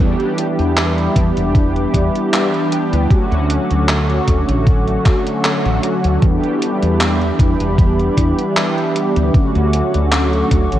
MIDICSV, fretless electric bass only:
0, 0, Header, 1, 2, 480
1, 0, Start_track
1, 0, Tempo, 779221
1, 1915, Time_signature, 4, 2, 24, 8
1, 6649, End_track
2, 0, Start_track
2, 0, Title_t, "Fretless electric bass"
2, 0, Program_c, 0, 35
2, 0, Note_on_c, 0, 40, 93
2, 79, Note_off_c, 0, 40, 0
2, 362, Note_on_c, 0, 40, 82
2, 654, Note_off_c, 0, 40, 0
2, 714, Note_on_c, 0, 40, 83
2, 799, Note_off_c, 0, 40, 0
2, 843, Note_on_c, 0, 28, 88
2, 1134, Note_off_c, 0, 28, 0
2, 1193, Note_on_c, 0, 40, 79
2, 1279, Note_off_c, 0, 40, 0
2, 1803, Note_on_c, 0, 38, 89
2, 1910, Note_off_c, 0, 38, 0
2, 2042, Note_on_c, 0, 38, 90
2, 2196, Note_off_c, 0, 38, 0
2, 2284, Note_on_c, 0, 38, 81
2, 2575, Note_off_c, 0, 38, 0
2, 2634, Note_on_c, 0, 38, 84
2, 2720, Note_off_c, 0, 38, 0
2, 2762, Note_on_c, 0, 33, 93
2, 3054, Note_off_c, 0, 33, 0
2, 3482, Note_on_c, 0, 33, 81
2, 3557, Note_off_c, 0, 33, 0
2, 3723, Note_on_c, 0, 38, 92
2, 3797, Note_off_c, 0, 38, 0
2, 3834, Note_on_c, 0, 40, 94
2, 3919, Note_off_c, 0, 40, 0
2, 4203, Note_on_c, 0, 40, 81
2, 4494, Note_off_c, 0, 40, 0
2, 4555, Note_on_c, 0, 40, 86
2, 4640, Note_off_c, 0, 40, 0
2, 4685, Note_on_c, 0, 28, 93
2, 4975, Note_off_c, 0, 28, 0
2, 5035, Note_on_c, 0, 40, 79
2, 5120, Note_off_c, 0, 40, 0
2, 5643, Note_on_c, 0, 38, 90
2, 5752, Note_off_c, 0, 38, 0
2, 5884, Note_on_c, 0, 38, 89
2, 6037, Note_off_c, 0, 38, 0
2, 6125, Note_on_c, 0, 38, 82
2, 6415, Note_off_c, 0, 38, 0
2, 6476, Note_on_c, 0, 38, 84
2, 6560, Note_off_c, 0, 38, 0
2, 6605, Note_on_c, 0, 33, 88
2, 6649, Note_off_c, 0, 33, 0
2, 6649, End_track
0, 0, End_of_file